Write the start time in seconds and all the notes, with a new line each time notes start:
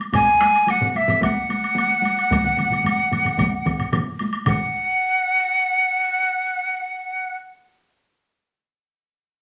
0.01 high woodblock
0.13 G#5, taiko, taiko low-mid, taiko high, high woodblock
0.26 taiko high
0.41 taiko rim, taiko high, high woodblock
0.56 high woodblock
0.67 F#5, taiko high, high woodblock
0.81 taiko low-mid, taiko high
0.90 F#5
0.95 E5, taiko high, high woodblock
1.08 taiko low-mid, taiko high, high woodblock
1.22 F#5, taiko, taiko low-mid, taiko high, high woodblock
1.36 taiko high
1.49 taiko high, high woodblock
1.63 taiko high, high woodblock
1.76 taiko high, high woodblock
1.90 taiko high
2.03 taiko high, high woodblock
2.17 taiko high, high woodblock
2.30 taiko, taiko low-mid, taiko mid, taiko high, high woodblock
2.44 taiko low-mid, taiko mid, taiko high
2.57 taiko low-mid, taiko mid, taiko high, high woodblock
2.70 taiko low-mid, taiko mid, taiko high, high woodblock
2.84 taiko low-mid, taiko mid, taiko high, high woodblock
2.98 taiko high
3.11 taiko low-mid, taiko mid, taiko high, high woodblock
3.25 taiko low-mid, taiko mid, high woodblock
3.38 taiko, taiko low-mid, taiko mid, taiko high, high woodblock
3.52 taiko high
3.66 taiko, taiko low-mid, taiko mid, taiko high, high woodblock
3.79 taiko low-mid, taiko mid, taiko high, high woodblock
3.92 taiko low-mid, taiko mid, taiko high, high woodblock
4.07 taiko high
4.19 taiko high, high woodblock
4.33 taiko high, high woodblock
4.46 F#5, taiko, taiko low-mid, taiko mid, taiko high, high woodblock